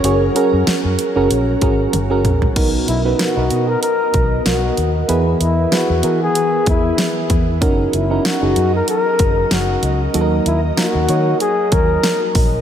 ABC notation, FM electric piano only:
X:1
M:4/4
L:1/16
Q:"Swing 16ths" 1/4=95
K:F#mix
V:1 name="FM electric piano"
[CFGc] z [CFGA]4 z [CFGA]2 z [CFGA]2 z [CFGA]2 z | [B,DFA]2 z [B,DFB] z [B,DFA]6 z4 z | [B,EGB]3 z [B,EGB] z [B,EGA]6 z4 | [CDFA]2 z [CDFA] z [CDFG]6 z4 z |
[A,DF=A^A]3 z [A,DFA] z [A,DFc]6 z4 |]
V:2 name="FM electric piano" clef=bass
z16 | B,,6 z8 z2 | E,6 z8 z2 | z16 |
F,6 z8 z2 |]